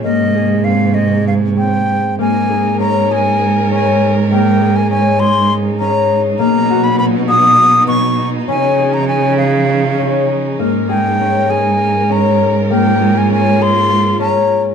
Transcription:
<<
  \new Staff \with { instrumentName = "Flute" } { \time 7/8 \key des \lydian \tempo 4 = 100 ees''4 f''8 ees''8 f''8 g''4 | aes''4 bes''8 aes''4 aes''8. r16 | g''8. aes''16 aes''8 c'''8 r8 bes''8. r16 | ais''8. b''16 b''8 dis'''4 des'''8. r16 |
aes''8. bes''16 aes''8 f''4. r8 | r8 g''4 aes''4 bes''8. r16 | g''8. aes''16 aes''8 c'''4 bes''8. r16 | }
  \new Staff \with { instrumentName = "Harp" } { \time 7/8 \key des \lydian bes8 aes'8 c'8 aes'4 c'4 | bes8 aes'8 des'8 aes'4 des'4 | bes8 aes'8 des'8 aes'4 des'4 | ais8 fis'8 b8 fis'4 b4 |
des'8 aes'8 des'8 aes'4 des'4 | bes8 aes'8 des'8 aes'4 des'4 | bes8 aes'8 des'8 aes'4 des'4 | }
  \new Staff \with { instrumentName = "String section" } { \clef bass \time 7/8 \key des \lydian << { <c bes>2.~ <c bes>8 | <aes bes'>2.~ <aes bes'>8~ | <aes bes'>2.~ <aes bes'>8 | fis2.~ fis8 |
f2.~ f8 | <aes bes'>2.~ <aes bes'>8~ | <aes bes'>2.~ <aes bes'>8 | } \\ { aes2.~ aes8 | ees'2.~ ees'8~ | ees'2.~ ees'8 | b,2.~ b,8 |
des'2.~ des'8 | r2. r8 | f'2.~ f'8 | } >> }
  \new Staff \with { instrumentName = "Cello" } { \clef bass \time 7/8 \key des \lydian aes,2.~ aes,8 | aes,2.~ aes,8~ | aes,2.~ aes,8 | b,2.~ b,8 |
des2.~ des8 | aes,2.~ aes,8~ | aes,2.~ aes,8 | }
>>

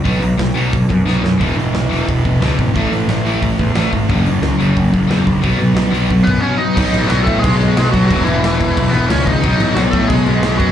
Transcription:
<<
  \new Staff \with { instrumentName = "Lead electric guitar" } { \time 4/4 \key b \mixolydian \tempo 4 = 179 r1 | r1 | r1 | r1 |
r2 r8 <b b'>8 <cis' cis''>8 <dis' dis''>8~ | <dis' dis''>4 <fis fis'>8 <a a'>8 <gis gis'>4. <fis fis'>8 | <fis fis'>8 <e e'>2 <b b'>8 <cis' cis''>8 <dis' dis''>8~ | <dis' dis''>4 <fis fis'>8 <a a'>8 <gis gis'>4. <fis fis'>8 | }
  \new Staff \with { instrumentName = "Distorted electric guitar" } { \clef bass \time 4/4 \key b \mixolydian r1 | <e, b, e>1 | <a, e a>1 | <fis, cis fis>1 |
<b, fis b>1 | <b, fis b>2~ <b, fis b>8 <b, fis b>8 <b, fis b>4 | <e, b, e>2~ <e, b, e>8 <e, b, e>8 <e, b, e>4 | <b, fis b>2~ <b, fis b>8 <b, fis b>8 <b, fis b>4 | }
  \new Staff \with { instrumentName = "Overdriven electric guitar" } { \clef bass \time 4/4 \key b \mixolydian <b, fis b>8 <b, fis>8 <b, fis>8 <b, fis b>8 <b, fis>8 <b, fis>8 <b, fis b>8 <b, fis>8 | <e, b, e>8 <e, b,>8 <e, b,>8 <e, b, e>8 <e, b,>8 <e, b,>8 <e, b, e>8 <e, b,>8 | <a, e a>8 <a, e>8 <a, e>8 <a, e a>8 <a, e>8 <a, e>8 <a, e a>8 <a, e>8 | <fis, cis fis>8 <fis, cis>8 <fis, cis>8 <fis, cis fis>8 <fis, cis>8 <fis, cis>8 <fis, cis fis>8 <fis, cis>8 |
<b, fis b>8 <b, fis>8 <b, fis>8 <b, fis b>8 <b, fis>8 <b, fis>8 <b, fis b>8 <b, fis>8 | <b, fis b>1 | <e, b, e>1 | <b, fis b>1 | }
  \new Staff \with { instrumentName = "Distorted electric guitar" } { \clef bass \time 4/4 \key b \mixolydian <b, fis b>8 <b, fis>8 <b, fis>8 <b, fis b>8 <b, fis>8 <b, fis>8 <b, fis b>8 <b, fis>8 | <e, b, e>8 <e, b,>8 <e, b,>8 <e, b, e>8 <e, b,>8 <e, b,>8 <e, b, e>8 <e, b,>8 | <a, e a>8 <a, e>8 <a, e>8 <a, e a>8 <a, e>8 <a, e>8 <a, e a>8 <a, e>8 | <fis, cis fis>8 <fis, cis>8 <fis, cis>8 <fis, cis fis>8 <fis, cis>8 <fis, cis>8 <fis, cis fis>8 <fis, cis>8 |
<b, fis b>8 <b, fis>8 <b, fis>8 <b, fis b>8 <b, fis>8 <b, fis>8 <b, fis b>8 <b, fis>8 | r1 | r1 | r1 | }
  \new Staff \with { instrumentName = "Picked electric bass" } { \clef bass \time 4/4 \key b \mixolydian b,,8 b,,8 b,,8 b,,8 b,,8 fis,8 b,,8 fis,8 | e,,8 e,,8 b,,8 e,,8 e,,8 e,,8 cis,8 gis,,8 | a,,8 a,,8 a,,8 a,,8 a,,8 e,8 a,,8 gis,,8 | fis,,8 fis,,8 cis,8 fis,,8 fis,,8 fis,,8 e,8 ais,,8 |
b,,8 b,,8 b,,8 b,,8 b,,8 fis,8 r4 | b,,8 a,,8 b,,8 a,8 b,,8 b,,8 b,,8 b,,8 | e,,8 e,,8 e,,8 e,,8 b,,8 e,,8 cis,8 cis,8 | b,,8 a,,8 b,,8 a,8 b,,8 b,,8 b,,8 fis,8 | }
  \new DrumStaff \with { instrumentName = "Drums" } \drummode { \time 4/4 <hho bd>8 hho8 <hho sn>8 hho8 <hho bd>8 <hho bd>8 sn8 sn8 | <hho bd>8 hho8 <hho sn>8 hho8 <hho bd>8 <hho bd>8 <hho sn>8 <hho bd>8 | <hho bd>8 hho8 <hho sn>8 hho8 <hho bd>8 <hho bd>8 <hho sn>8 <hho bd>8 | <hho bd>8 hho8 <hho sn>8 hho8 <hho bd>8 <hho bd>8 <hho sn>8 <hho bd>8 |
<hho bd>8 hho8 <hho sn>8 hho8 <hho bd>8 <hho bd>8 r4 | <cymc bd>8 cymc8 <cymc sn>8 <cymc bd>8 <cymc bd>8 cymc8 <cymc sn>8 <cymc bd>8 | <cymc bd>8 cymc8 <cymc sn>8 <cymc bd>8 <cymc bd>8 cymc8 <cymc sn>8 <cymc bd>8 | <cymc bd>8 cymc8 <cymc sn>8 <cymc bd>8 <cymc bd>8 cymc8 <cymc sn>8 <cymc bd>8 | }
>>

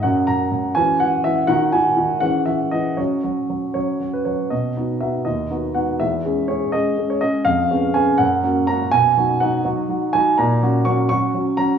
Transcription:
<<
  \new Staff \with { instrumentName = "Grand piano" } { \time 6/8 \key b \major \tempo 4. = 82 << { fis''8 ais''4 gis''8 fis''8 e''8 | fis''8 gis''4 fis''8 e''8 dis''8 | cis''4. cis''8. b'16 cis''8 | dis''4 e''8 dis''4 fis''8 |
e''4 cis''8 dis''8. cis''16 dis''8 | eis''4 gis''8 fis''4 ais''8 | gis''4 fis''8 r4 gis''8 | ais''4 cis'''8 cis'''4 ais''8 | } \\ { <cis' fis'>4. <cis' fis'>4. | <dis' fis'>4. <cis' gis'>4. | <cis' fis'>4. <cis' fis'>4. | r2. |
r2. | r2. | r2. | r2. | } >> }
  \new Staff \with { instrumentName = "Grand piano" } { \time 6/8 \key b \major fis,8 fis,8 fis,8 e8 e8 e8 | dis8 dis8 dis8 e8 e8 e8 | fis8 fis8 fis8 fis8 fis8 fis8 | b,8 <b dis' fis'>8 <b dis' fis'>8 dis,8 <b dis' fis'>8 <b dis' fis'>8 |
e,8 <gis cis' gis'>8 <gis cis' gis'>8 <gis cis' gis'>8 <gis gis'>8 <gis cis' gis'>8 | eis,8 <b cis' gis'>8 <b cis' gis'>8 fis,8 <ais cis' fis'>8 <ais cis' fis'>8 | b,8 <fis dis' fis'>8 <fis dis' fis'>8 <fis dis' fis'>8 <fis dis' fis'>8 <fis dis' fis'>8 | ais,8 <fis cis' fis'>8 <fis cis' fis'>8 <fis cis' fis'>8 <fis cis' fis'>8 <fis cis' fis'>8 | }
>>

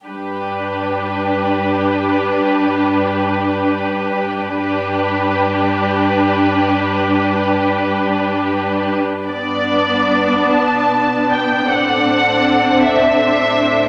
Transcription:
<<
  \new Staff \with { instrumentName = "Violin section" } { \time 12/8 \key g \major \tempo 4. = 53 b'1. | b'1~ b'4.~ b'16 r16 | d''4. a''4 g''8 fis''4. e''4. | }
  \new Staff \with { instrumentName = "Violin section" } { \time 12/8 \key g \major << { g'1. | g'1~ g'4.~ g'16 r16 | d''2. d''2 c''4 | } \\ { r1. | r1. | b'2. a'2. | } >> }
  \new Staff \with { instrumentName = "Viola section" } { \time 12/8 \key g \major d'1. | d'1~ d'4.~ d'16 r16 | <b d'>2. <c' d'>2. | }
  \new Staff \with { instrumentName = "Cello section" } { \clef bass \time 12/8 \key g \major g,1. | g,1~ g,4.~ g,16 r16 | g,4. b,4. a,2. | }
>>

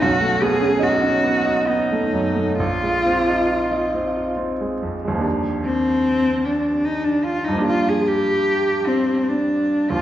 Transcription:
<<
  \new Staff \with { instrumentName = "Cello" } { \time 3/4 \key bes \dorian \tempo 4 = 74 fis'8 aes'8 fis'4 dis'4 | f'2 r4 | r8 c'4 d'8 ees'16 d'16 f'16 ees'16 | f'16 aes'16 g'4 c'8 d'8. f'16 | }
  \new Staff \with { instrumentName = "Grand piano" } { \time 3/4 \key bes \dorian b,,16 a16 b16 cis'16 dis'16 cis'16 b16 dis'16 b16 a16 fis,16 a16 | bes,,16 aes16 c'16 ees'16 f'16 ees'16 c'16 f'16 c'16 aes16 f,16 aes16 | <ees, f bes d' g'>2. | <g, f bes d' g'>2. | }
>>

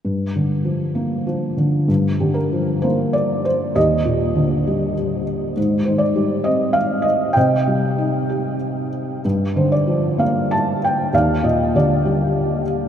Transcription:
<<
  \new Staff \with { instrumentName = "Felt piano" } { \time 3/4 \key g \phrygian \tempo 4 = 98 << { r2. | r8 g'16 bes'8. c''8 d''8 c''8 | ees''2 r4 | r8 c''16 d''8. ees''8 f''8 ees''8 |
g''2 r4 | r8 c''16 d''8. f''8 a''8 g''8 | f''8 ees''8 d''4. r8 | } \\ { r2. | r2. | g'2 r4 | r2. |
ees''2 r4 | r2. | d''4 g'4. r8 | } >> }
  \new Staff \with { instrumentName = "Felt piano" } { \clef bass \time 3/4 \key g \phrygian g,8 d8 f8 bes8 f8 d8 | g,8 d8 f8 bes4. | ees,8 bes,8 d8 g4. | aes,8 ees8 g8 c'4. |
c8 g8 ees'8 g'4. | g,8 d8 f8 bes4. | ees,8 bes,8 d8 g4. | }
>>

